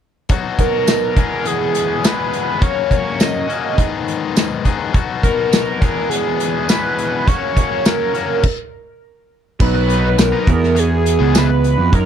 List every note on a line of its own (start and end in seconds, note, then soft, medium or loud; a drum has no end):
0.29 1.15 B2 medium
0.29 1.16 F#3 medium
0.29 1.16 B3 medium
0.29 1.17 D#4 medium
0.29 1.17 F#4 medium
0.29 kick medium
0.29 closed hi-hat medium
0.59 1.48 A#4 medium
0.59 kick medium
0.59 closed hi-hat medium
0.87 snare medium
0.87 closed hi-hat medium
0.87 tambourine loud
1.16 2.02 E2 medium
1.16 2.02 B2 medium
1.16 2.03 E3 medium
1.16 2.03 G#3 medium
1.16 2.03 B3 medium
1.16 2.04 G#4 medium
1.16 kick medium
1.16 closed hi-hat medium
1.45 2.07 G#4 medium
1.45 closed hi-hat medium
1.75 closed hi-hat medium
2.03 2.60 E2 medium
2.03 2.60 B2 medium
2.03 2.61 E3 medium
2.03 2.61 G#3 medium
2.03 2.61 B3 medium
2.03 2.62 G#4 medium
2.03 2.64 B4 medium
2.03 snare medium
2.03 closed hi-hat medium
2.03 tambourine loud
2.33 closed hi-hat medium
2.61 3.47 F#2 medium
2.61 3.47 C#3 medium
2.61 3.48 F#3 medium
2.61 3.48 A#3 medium
2.61 3.48 C#4 medium
2.61 3.46 F#4 medium
2.61 3.22 C#5 loud
2.61 kick medium
2.61 closed hi-hat medium
2.91 kick medium
2.91 closed hi-hat medium
3.20 3.78 D#5 loud
3.20 snare loud
3.20 closed hi-hat medium
3.20 tambourine loud
3.48 3.77 F#2 medium
3.48 3.78 C#3 medium
3.48 3.77 F#3 medium
3.48 3.77 A#3 medium
3.48 3.76 C#4 medium
3.48 3.76 F#4 medium
3.48 closed hi-hat soft
3.78 4.64 G#2 medium
3.78 4.64 D#3 medium
3.78 4.64 G#3 medium
3.78 4.65 B3 medium
3.78 4.65 D#4 medium
3.78 4.64 G#4 medium
3.78 kick medium
3.78 closed hi-hat medium
4.08 closed hi-hat soft
4.36 snare loud
4.36 closed hi-hat medium
4.36 tambourine medium
4.65 4.94 G#2 medium
4.65 4.92 D#3 medium
4.65 4.93 G#3 medium
4.65 4.93 B3 medium
4.65 4.93 D#4 medium
4.65 4.93 G#4 medium
4.65 kick medium
4.65 closed hi-hat soft
4.93 5.79 B2 medium
4.93 5.80 F#3 medium
4.93 5.80 B3 medium
4.93 5.81 D#4 medium
4.93 5.81 F#4 medium
4.93 kick medium
4.93 closed hi-hat medium
5.23 6.11 A#4 medium
5.23 kick medium
5.23 closed hi-hat medium
5.53 snare loud
5.53 closed hi-hat medium
5.53 tambourine loud
5.80 6.67 E2 medium
5.80 6.67 B2 medium
5.80 6.68 E3 medium
5.80 6.68 G#3 medium
5.80 6.68 B3 medium
5.80 6.68 G#4 loud
5.80 kick medium
5.80 closed hi-hat medium
6.10 6.71 G#4 medium
6.10 closed hi-hat medium
6.40 closed hi-hat medium
6.69 7.25 E2 medium
6.69 7.26 B2 medium
6.69 7.26 E3 medium
6.69 7.27 G#3 medium
6.69 7.27 B3 medium
6.69 7.27 G#4 medium
6.69 7.29 B4 medium
6.69 snare medium
6.69 closed hi-hat medium
6.69 tambourine loud
6.98 closed hi-hat medium
7.27 8.13 F#2 medium
7.27 8.13 C#3 medium
7.27 8.14 F#3 medium
7.27 8.14 A#3 medium
7.27 8.13 C#4 medium
7.27 8.12 F#4 medium
7.27 7.87 C#5 loud
7.27 kick medium
7.27 closed hi-hat medium
7.57 kick medium
7.57 closed hi-hat medium
7.85 8.44 A#4 medium
7.85 snare loud
7.85 closed hi-hat medium
7.85 tambourine loud
8.13 8.43 F#2 medium
8.13 8.43 C#3 medium
8.13 8.43 F#3 medium
8.13 8.43 A#3 medium
8.13 8.42 C#4 medium
8.13 8.42 F#4 medium
8.13 closed hi-hat medium
8.43 kick medium
8.43 crash medium
9.60 10.15 B1 loud
9.60 10.46 B2 medium
9.60 10.46 F#3 medium
9.60 10.47 B3 medium
9.60 10.47 D#4 medium
9.60 10.48 F#4 medium
9.60 10.21 B4 loud
9.60 kick loud
9.60 crash medium
9.74 muted overdriven electric guitar stroke medium
9.88 10.08 F#3 medium
9.88 10.08 B3 medium
9.88 10.08 D#4 medium
9.88 10.08 B4 medium
9.88 closed hi-hat medium
10.18 10.32 B1 medium
10.18 10.81 A#4 loud
10.18 muted overdriven electric guitar stroke soft
10.18 snare loud
10.18 closed hi-hat medium
10.18 tambourine loud
10.32 10.48 F#3 medium
10.32 10.48 B3 medium
10.32 10.48 D#4 medium
10.32 10.48 B4 medium
10.46 11.91 E2 medium
10.46 11.17 E2 medium
10.46 11.92 B2 medium
10.46 11.91 E3 medium
10.46 11.92 B3 medium
10.46 11.93 E4 medium
10.46 11.93 G#4 loud
10.46 kick medium
10.46 closed hi-hat medium
10.63 snare soft
10.75 muted overdriven electric guitar stroke soft
10.75 closed hi-hat medium
10.79 11.39 G#4 loud
11.06 closed hi-hat medium
11.19 11.75 C#2 medium
11.19 11.33 G#3 medium
11.19 11.33 B3 medium
11.19 11.33 E4 medium
11.19 11.34 G#4 medium
11.34 11.49 G#3 medium
11.34 11.49 B3 medium
11.34 11.48 E4 medium
11.34 11.48 G#4 medium
11.34 11.94 B4 medium
11.34 snare medium
11.34 closed hi-hat medium
11.34 tambourine loud
11.49 muted overdriven electric guitar stroke medium
11.64 closed hi-hat medium
11.78 11.92 F2 medium
11.92 12.05 F#2 loud
11.92 12.05 F#3 medium
11.92 12.05 C#4 medium
11.92 12.05 D#4 loud
11.92 12.05 A#4 medium
11.92 12.05 A#4 loud
11.92 kick medium
11.92 closed hi-hat medium